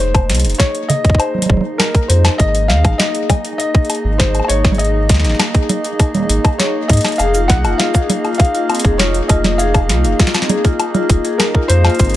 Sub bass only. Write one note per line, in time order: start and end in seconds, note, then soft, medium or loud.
0.00 0.31 F1 medium
0.30 0.46 C2 loud
0.45 0.54 F1 medium
1.50 1.59 F1 loud
2.10 2.29 F2 loud
2.40 2.71 G#1 loud
2.70 2.86 D#2 loud
2.85 2.94 G#1 medium
4.04 4.41 G#1 medium
4.50 5.11 G#1 medium
5.10 5.26 D#2 medium
5.25 5.34 G#1 medium
6.29 6.39 G#1 loud
6.90 6.99 G#2 loud
7.20 7.51 F1 medium
7.50 7.66 C2 loud
7.65 7.74 F1 medium
8.85 9.21 F1 medium
9.30 9.91 F1 medium
9.90 10.06 C2 loud
10.05 10.14 F1 medium
11.10 11.19 F1 loud
11.69 11.89 F2 loud
12.00 12.16 G#1 loud